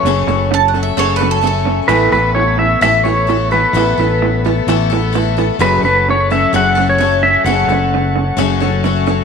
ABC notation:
X:1
M:4/4
L:1/16
Q:1/4=130
K:F#m
V:1 name="Mandolin"
z4 (3a2 f2 e2 (3c2 B2 A2 A3 z | z16 | z16 | z16 |
z16 |]
V:2 name="Pedal steel guitar"
c6 z8 z2 | B2 B2 c2 e2 e2 c4 B2- | B6 z8 z2 | B2 B2 c2 e2 f3 c3 e2 |
f12- f2 z2 |]
V:3 name="Tonewheel organ"
z16 | [A,EB]16- | [A,EB]16 | [F,CA]16- |
[F,CA]16 |]
V:4 name="Twelve-string acoustic guitar"
[F,,C,F,A,CA]2 [F,A,CA]4 [F,A,CA]2 [F,,C,F,A,CA]2 [F,A,CA]2 [F,A,CA]4 | [A,,E,A,B,A]2 [A,B,A]6 [A,,E,A,B,A]2 [A,B,A]2 [E,A,B,A]2 [A,B,A]2 | [A,,E,A,B,A]2 [A,B,A]4 [A,B,A]2 [A,,E,A,B,A]2 [A,B,A]2 [E,A,B,A]2 [A,B,A]2 | [F,,C,F,A,CA]2 [F,A,CA]4 [F,A,CA]2 [F,,C,F,A,CA]2 [F,A,CA]2 [F,A,CA]4 |
[F,,C,F,A,CA]2 [F,A,CA]6 [F,,C,F,A,CA]2 [F,A,CA]2 [F,A,CA]2 [F,A,CA]2 |]
V:5 name="Clean electric guitar" clef=bass
[F,,C,]2 [F,,C,]2 [F,,C,]2 [F,,C,]2 [F,,C,]2 [F,,C,]2 [F,,C,]2 [F,,C,]2 | [A,,E,A,]2 [A,,E,]2 [A,,E,]2 [A,,E,]2 [A,,E,]2 [A,,E,]2 [A,,E,]2 [A,,E,]2 | [A,,E,]2 [A,,E,]2 [A,,E,]2 [A,,E,]2 [A,,E,]2 [A,,E,]2 [A,,E,]2 [A,,E,]2 | [F,,C,F,]2 [F,,C,]2 [F,,C,]2 [F,,C,]2 [F,,C,]2 [F,,C,]2 [F,,C,]2 [F,,C,]2 |
[F,,C,]2 [F,,C,]2 [F,,C,]2 [F,,C,]2 [F,,C,]2 [F,,C,]2 [F,,C,]2 [F,,C,]2 |]
V:6 name="Fingered electric bass" clef=bass
F,,,2 F,,,6 F,,,8 | A,,,2 A,,,6 A,,,8 | A,,,2 A,,,6 A,,,8 | F,,,2 F,,,6 F,,,8 |
F,,,2 F,,,6 F,,,8 |]